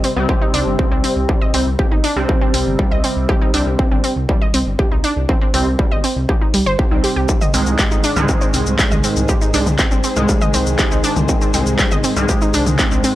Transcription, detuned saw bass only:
0, 0, Header, 1, 2, 480
1, 0, Start_track
1, 0, Key_signature, -3, "minor"
1, 0, Tempo, 500000
1, 1237, Time_signature, 4, 2, 24, 8
1, 12625, End_track
2, 0, Start_track
2, 0, Title_t, "Detuned saw bass"
2, 0, Program_c, 0, 39
2, 158, Note_on_c, 0, 36, 83
2, 245, Note_off_c, 0, 36, 0
2, 517, Note_on_c, 0, 36, 87
2, 606, Note_off_c, 0, 36, 0
2, 638, Note_on_c, 0, 31, 83
2, 726, Note_off_c, 0, 31, 0
2, 878, Note_on_c, 0, 36, 74
2, 966, Note_off_c, 0, 36, 0
2, 1117, Note_on_c, 0, 36, 76
2, 1205, Note_off_c, 0, 36, 0
2, 1478, Note_on_c, 0, 36, 85
2, 1566, Note_off_c, 0, 36, 0
2, 1598, Note_on_c, 0, 36, 79
2, 1685, Note_off_c, 0, 36, 0
2, 1838, Note_on_c, 0, 31, 78
2, 1926, Note_off_c, 0, 31, 0
2, 2078, Note_on_c, 0, 36, 80
2, 2165, Note_off_c, 0, 36, 0
2, 2438, Note_on_c, 0, 36, 89
2, 2526, Note_off_c, 0, 36, 0
2, 2559, Note_on_c, 0, 31, 82
2, 2646, Note_off_c, 0, 31, 0
2, 2799, Note_on_c, 0, 36, 79
2, 2886, Note_off_c, 0, 36, 0
2, 3039, Note_on_c, 0, 36, 76
2, 3126, Note_off_c, 0, 36, 0
2, 3398, Note_on_c, 0, 36, 90
2, 3486, Note_off_c, 0, 36, 0
2, 3518, Note_on_c, 0, 36, 83
2, 3606, Note_off_c, 0, 36, 0
2, 3758, Note_on_c, 0, 31, 77
2, 3846, Note_off_c, 0, 31, 0
2, 3997, Note_on_c, 0, 36, 79
2, 4085, Note_off_c, 0, 36, 0
2, 4357, Note_on_c, 0, 36, 90
2, 4446, Note_off_c, 0, 36, 0
2, 4477, Note_on_c, 0, 31, 81
2, 4565, Note_off_c, 0, 31, 0
2, 4718, Note_on_c, 0, 36, 77
2, 4806, Note_off_c, 0, 36, 0
2, 4958, Note_on_c, 0, 36, 77
2, 5046, Note_off_c, 0, 36, 0
2, 5317, Note_on_c, 0, 36, 88
2, 5406, Note_off_c, 0, 36, 0
2, 5437, Note_on_c, 0, 36, 78
2, 5525, Note_off_c, 0, 36, 0
2, 5678, Note_on_c, 0, 31, 81
2, 5765, Note_off_c, 0, 31, 0
2, 5917, Note_on_c, 0, 36, 80
2, 6005, Note_off_c, 0, 36, 0
2, 6276, Note_on_c, 0, 36, 91
2, 6365, Note_off_c, 0, 36, 0
2, 6397, Note_on_c, 0, 31, 81
2, 6485, Note_off_c, 0, 31, 0
2, 6637, Note_on_c, 0, 36, 80
2, 6725, Note_off_c, 0, 36, 0
2, 6877, Note_on_c, 0, 36, 77
2, 6965, Note_off_c, 0, 36, 0
2, 7236, Note_on_c, 0, 36, 88
2, 7325, Note_off_c, 0, 36, 0
2, 7357, Note_on_c, 0, 36, 80
2, 7445, Note_off_c, 0, 36, 0
2, 7597, Note_on_c, 0, 31, 79
2, 7685, Note_off_c, 0, 31, 0
2, 7837, Note_on_c, 0, 36, 85
2, 7925, Note_off_c, 0, 36, 0
2, 8197, Note_on_c, 0, 36, 94
2, 8286, Note_off_c, 0, 36, 0
2, 8317, Note_on_c, 0, 36, 83
2, 8405, Note_off_c, 0, 36, 0
2, 8558, Note_on_c, 0, 36, 81
2, 8645, Note_off_c, 0, 36, 0
2, 8798, Note_on_c, 0, 36, 76
2, 8885, Note_off_c, 0, 36, 0
2, 9158, Note_on_c, 0, 36, 93
2, 9246, Note_off_c, 0, 36, 0
2, 9278, Note_on_c, 0, 36, 80
2, 9366, Note_off_c, 0, 36, 0
2, 9518, Note_on_c, 0, 31, 80
2, 9606, Note_off_c, 0, 31, 0
2, 9759, Note_on_c, 0, 36, 85
2, 9846, Note_off_c, 0, 36, 0
2, 10118, Note_on_c, 0, 36, 93
2, 10206, Note_off_c, 0, 36, 0
2, 10238, Note_on_c, 0, 36, 83
2, 10326, Note_off_c, 0, 36, 0
2, 10478, Note_on_c, 0, 36, 79
2, 10566, Note_off_c, 0, 36, 0
2, 10718, Note_on_c, 0, 36, 79
2, 10806, Note_off_c, 0, 36, 0
2, 11078, Note_on_c, 0, 36, 89
2, 11166, Note_off_c, 0, 36, 0
2, 11199, Note_on_c, 0, 36, 81
2, 11286, Note_off_c, 0, 36, 0
2, 11439, Note_on_c, 0, 31, 79
2, 11526, Note_off_c, 0, 31, 0
2, 11679, Note_on_c, 0, 36, 82
2, 11766, Note_off_c, 0, 36, 0
2, 12038, Note_on_c, 0, 36, 92
2, 12126, Note_off_c, 0, 36, 0
2, 12159, Note_on_c, 0, 36, 84
2, 12246, Note_off_c, 0, 36, 0
2, 12399, Note_on_c, 0, 36, 82
2, 12486, Note_off_c, 0, 36, 0
2, 12625, End_track
0, 0, End_of_file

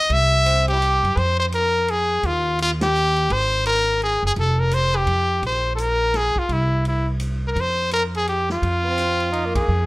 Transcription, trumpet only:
0, 0, Header, 1, 2, 480
1, 0, Start_track
1, 0, Key_signature, -4, "minor"
1, 0, Tempo, 355030
1, 139, Time_signature, 3, 2, 24, 8
1, 13332, End_track
2, 0, Start_track
2, 0, Title_t, "Trumpet"
2, 0, Program_c, 0, 56
2, 0, Note_on_c, 0, 75, 104
2, 174, Note_on_c, 0, 76, 103
2, 195, Note_off_c, 0, 75, 0
2, 913, Note_off_c, 0, 76, 0
2, 921, Note_on_c, 0, 67, 92
2, 1595, Note_on_c, 0, 72, 93
2, 1615, Note_off_c, 0, 67, 0
2, 1884, Note_off_c, 0, 72, 0
2, 1892, Note_on_c, 0, 72, 88
2, 1971, Note_off_c, 0, 72, 0
2, 2092, Note_on_c, 0, 70, 93
2, 2579, Note_on_c, 0, 68, 90
2, 2599, Note_off_c, 0, 70, 0
2, 3056, Note_on_c, 0, 65, 90
2, 3077, Note_off_c, 0, 68, 0
2, 3521, Note_off_c, 0, 65, 0
2, 3545, Note_on_c, 0, 65, 92
2, 3671, Note_off_c, 0, 65, 0
2, 3825, Note_on_c, 0, 67, 94
2, 4498, Note_on_c, 0, 72, 91
2, 4519, Note_off_c, 0, 67, 0
2, 4950, Note_off_c, 0, 72, 0
2, 4958, Note_on_c, 0, 70, 96
2, 5399, Note_off_c, 0, 70, 0
2, 5457, Note_on_c, 0, 68, 85
2, 5724, Note_off_c, 0, 68, 0
2, 5770, Note_on_c, 0, 68, 87
2, 5841, Note_off_c, 0, 68, 0
2, 5946, Note_on_c, 0, 69, 82
2, 6217, Note_on_c, 0, 70, 86
2, 6238, Note_off_c, 0, 69, 0
2, 6412, Note_on_c, 0, 72, 96
2, 6433, Note_off_c, 0, 70, 0
2, 6711, Note_on_c, 0, 67, 88
2, 6731, Note_off_c, 0, 72, 0
2, 7359, Note_off_c, 0, 67, 0
2, 7389, Note_on_c, 0, 72, 87
2, 7751, Note_off_c, 0, 72, 0
2, 7785, Note_on_c, 0, 69, 62
2, 7850, Note_on_c, 0, 70, 98
2, 7870, Note_off_c, 0, 69, 0
2, 8336, Note_on_c, 0, 68, 88
2, 8356, Note_off_c, 0, 70, 0
2, 8634, Note_on_c, 0, 65, 79
2, 8655, Note_off_c, 0, 68, 0
2, 8823, Note_on_c, 0, 64, 85
2, 8843, Note_off_c, 0, 65, 0
2, 9285, Note_off_c, 0, 64, 0
2, 9306, Note_on_c, 0, 64, 71
2, 9568, Note_off_c, 0, 64, 0
2, 10109, Note_on_c, 0, 70, 84
2, 10166, Note_off_c, 0, 70, 0
2, 10166, Note_on_c, 0, 70, 80
2, 10286, Note_on_c, 0, 72, 101
2, 10306, Note_off_c, 0, 70, 0
2, 10717, Note_off_c, 0, 72, 0
2, 10725, Note_on_c, 0, 70, 94
2, 10856, Note_off_c, 0, 70, 0
2, 11041, Note_on_c, 0, 68, 90
2, 11191, Note_off_c, 0, 68, 0
2, 11206, Note_on_c, 0, 67, 81
2, 11477, Note_off_c, 0, 67, 0
2, 11520, Note_on_c, 0, 65, 90
2, 12888, Note_off_c, 0, 65, 0
2, 12927, Note_on_c, 0, 68, 74
2, 13332, Note_off_c, 0, 68, 0
2, 13332, End_track
0, 0, End_of_file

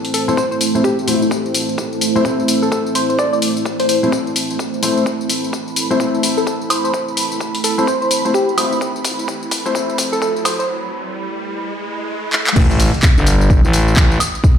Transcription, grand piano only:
0, 0, Header, 1, 2, 480
1, 0, Start_track
1, 0, Key_signature, 0, "minor"
1, 0, Tempo, 468750
1, 1342, Time_signature, 4, 2, 24, 8
1, 14934, End_track
2, 0, Start_track
2, 0, Title_t, "Grand piano"
2, 0, Program_c, 0, 0
2, 0, Note_on_c, 0, 57, 70
2, 0, Note_on_c, 0, 60, 63
2, 0, Note_on_c, 0, 64, 64
2, 0, Note_on_c, 0, 72, 76
2, 252, Note_off_c, 0, 57, 0
2, 252, Note_off_c, 0, 72, 0
2, 253, Note_off_c, 0, 60, 0
2, 253, Note_off_c, 0, 64, 0
2, 287, Note_on_c, 0, 57, 77
2, 287, Note_on_c, 0, 60, 70
2, 287, Note_on_c, 0, 64, 70
2, 287, Note_on_c, 0, 72, 85
2, 365, Note_off_c, 0, 57, 0
2, 365, Note_off_c, 0, 60, 0
2, 365, Note_off_c, 0, 64, 0
2, 365, Note_off_c, 0, 72, 0
2, 767, Note_on_c, 0, 57, 71
2, 767, Note_on_c, 0, 60, 65
2, 767, Note_on_c, 0, 64, 65
2, 767, Note_on_c, 0, 72, 79
2, 845, Note_off_c, 0, 57, 0
2, 845, Note_off_c, 0, 60, 0
2, 845, Note_off_c, 0, 64, 0
2, 845, Note_off_c, 0, 72, 0
2, 1102, Note_on_c, 0, 57, 70
2, 1102, Note_on_c, 0, 60, 65
2, 1102, Note_on_c, 0, 64, 64
2, 1102, Note_on_c, 0, 72, 78
2, 1221, Note_off_c, 0, 57, 0
2, 1221, Note_off_c, 0, 60, 0
2, 1221, Note_off_c, 0, 64, 0
2, 1221, Note_off_c, 0, 72, 0
2, 2207, Note_on_c, 0, 57, 90
2, 2207, Note_on_c, 0, 60, 80
2, 2207, Note_on_c, 0, 64, 83
2, 2207, Note_on_c, 0, 72, 98
2, 2280, Note_off_c, 0, 57, 0
2, 2280, Note_off_c, 0, 60, 0
2, 2280, Note_off_c, 0, 64, 0
2, 2280, Note_off_c, 0, 72, 0
2, 2302, Note_on_c, 0, 57, 71
2, 2302, Note_on_c, 0, 60, 66
2, 2302, Note_on_c, 0, 64, 65
2, 2302, Note_on_c, 0, 72, 80
2, 4092, Note_off_c, 0, 60, 0
2, 4093, Note_off_c, 0, 57, 0
2, 4093, Note_off_c, 0, 64, 0
2, 4093, Note_off_c, 0, 72, 0
2, 4127, Note_on_c, 0, 57, 79
2, 4127, Note_on_c, 0, 60, 72
2, 4127, Note_on_c, 0, 64, 73
2, 4127, Note_on_c, 0, 72, 85
2, 4205, Note_off_c, 0, 57, 0
2, 4205, Note_off_c, 0, 60, 0
2, 4205, Note_off_c, 0, 64, 0
2, 4205, Note_off_c, 0, 72, 0
2, 4942, Note_on_c, 0, 57, 83
2, 4942, Note_on_c, 0, 60, 76
2, 4942, Note_on_c, 0, 64, 74
2, 4942, Note_on_c, 0, 72, 90
2, 5117, Note_off_c, 0, 57, 0
2, 5117, Note_off_c, 0, 60, 0
2, 5117, Note_off_c, 0, 64, 0
2, 5117, Note_off_c, 0, 72, 0
2, 6047, Note_on_c, 0, 57, 90
2, 6047, Note_on_c, 0, 60, 79
2, 6047, Note_on_c, 0, 64, 81
2, 6047, Note_on_c, 0, 72, 96
2, 6119, Note_off_c, 0, 72, 0
2, 6120, Note_off_c, 0, 57, 0
2, 6120, Note_off_c, 0, 60, 0
2, 6120, Note_off_c, 0, 64, 0
2, 6142, Note_on_c, 0, 57, 72
2, 6142, Note_on_c, 0, 60, 65
2, 6142, Note_on_c, 0, 64, 68
2, 6142, Note_on_c, 0, 72, 79
2, 7932, Note_off_c, 0, 72, 0
2, 7933, Note_off_c, 0, 57, 0
2, 7933, Note_off_c, 0, 60, 0
2, 7933, Note_off_c, 0, 64, 0
2, 7968, Note_on_c, 0, 57, 81
2, 7968, Note_on_c, 0, 60, 72
2, 7968, Note_on_c, 0, 64, 74
2, 7968, Note_on_c, 0, 72, 90
2, 8045, Note_off_c, 0, 57, 0
2, 8045, Note_off_c, 0, 60, 0
2, 8045, Note_off_c, 0, 64, 0
2, 8045, Note_off_c, 0, 72, 0
2, 8447, Note_on_c, 0, 64, 67
2, 8448, Note_on_c, 0, 57, 73
2, 8448, Note_on_c, 0, 60, 68
2, 8448, Note_on_c, 0, 72, 81
2, 8525, Note_off_c, 0, 60, 0
2, 8525, Note_off_c, 0, 64, 0
2, 8526, Note_off_c, 0, 57, 0
2, 8526, Note_off_c, 0, 72, 0
2, 8783, Note_on_c, 0, 57, 75
2, 8783, Note_on_c, 0, 60, 67
2, 8783, Note_on_c, 0, 64, 68
2, 8783, Note_on_c, 0, 72, 81
2, 8901, Note_off_c, 0, 57, 0
2, 8901, Note_off_c, 0, 60, 0
2, 8901, Note_off_c, 0, 64, 0
2, 8901, Note_off_c, 0, 72, 0
2, 9887, Note_on_c, 0, 64, 86
2, 9887, Note_on_c, 0, 72, 99
2, 9888, Note_on_c, 0, 57, 92
2, 9888, Note_on_c, 0, 60, 86
2, 9960, Note_off_c, 0, 57, 0
2, 9960, Note_off_c, 0, 60, 0
2, 9960, Note_off_c, 0, 64, 0
2, 9960, Note_off_c, 0, 72, 0
2, 9982, Note_on_c, 0, 57, 73
2, 9982, Note_on_c, 0, 72, 82
2, 9983, Note_on_c, 0, 60, 69
2, 9983, Note_on_c, 0, 64, 70
2, 10943, Note_off_c, 0, 57, 0
2, 10943, Note_off_c, 0, 60, 0
2, 10943, Note_off_c, 0, 64, 0
2, 10943, Note_off_c, 0, 72, 0
2, 14934, End_track
0, 0, End_of_file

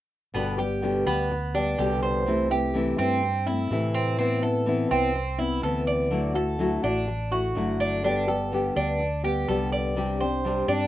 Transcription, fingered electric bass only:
0, 0, Header, 1, 2, 480
1, 0, Start_track
1, 0, Key_signature, 1, "major"
1, 0, Tempo, 481039
1, 342, Time_signature, 4, 2, 24, 8
1, 10849, End_track
2, 0, Start_track
2, 0, Title_t, "Fingered electric bass"
2, 0, Program_c, 0, 33
2, 343, Note_on_c, 0, 31, 76
2, 1023, Note_off_c, 0, 31, 0
2, 1063, Note_on_c, 0, 38, 84
2, 1743, Note_off_c, 0, 38, 0
2, 1784, Note_on_c, 0, 36, 80
2, 2919, Note_off_c, 0, 36, 0
2, 2982, Note_on_c, 0, 43, 87
2, 3662, Note_off_c, 0, 43, 0
2, 3700, Note_on_c, 0, 45, 73
2, 4837, Note_off_c, 0, 45, 0
2, 4900, Note_on_c, 0, 36, 86
2, 5581, Note_off_c, 0, 36, 0
2, 5621, Note_on_c, 0, 38, 74
2, 6758, Note_off_c, 0, 38, 0
2, 6823, Note_on_c, 0, 33, 90
2, 7503, Note_off_c, 0, 33, 0
2, 7539, Note_on_c, 0, 31, 71
2, 8677, Note_off_c, 0, 31, 0
2, 8745, Note_on_c, 0, 38, 86
2, 9424, Note_off_c, 0, 38, 0
2, 9461, Note_on_c, 0, 36, 75
2, 10598, Note_off_c, 0, 36, 0
2, 10657, Note_on_c, 0, 43, 87
2, 10849, Note_off_c, 0, 43, 0
2, 10849, End_track
0, 0, End_of_file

